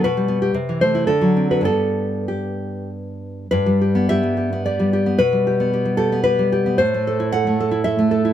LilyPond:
\new Staff \with { instrumentName = "Nylon-string guitar" } { \time 3/4 \key g \major \tempo 4 = 110 << { b'4. c''8 a'8. b'16 | a'4 g'4 r4 | b'4 e''4 d''4 | b'4. a'8 b'4 |
c''4 fis''4 e''4 | } \\ { b,16 g16 b16 g'16 c16 e16 a16 e'16 d16 fis16 c'16 fis'16 | <g, g b>2. | g,16 g16 g'16 b16 g'16 g16 g'16 b16 g'16 g16 g'16 b16 | b,16 g16 g'16 b16 g'16 g16 g'16 b16 g'16 g16 g'16 b16 |
a,16 a16 a'16 e'16 a'16 a16 a'16 e'16 a'16 a16 a'16 e'16 | } >> }